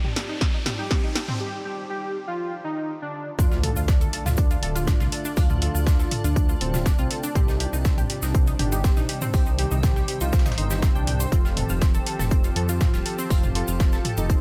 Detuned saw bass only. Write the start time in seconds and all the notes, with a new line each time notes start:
3.39 D2
3.76 D2
4.26 D2
4.63 D1
5.00 C2
5.37 D2
5.75 D2
6.24 D2
6.61 D1
6.99 C2
7.35 C2
7.73 C2
8.23 C2
8.59 G1
8.97 A#1
9.34 C2
9.71 C2
10.21 C2
10.58 G1
10.95 C2
11.32 F1
11.70 F1
12.19 F1
12.56 F2
12.94 D#1
13.30 F1
13.68 F1
14.18 F1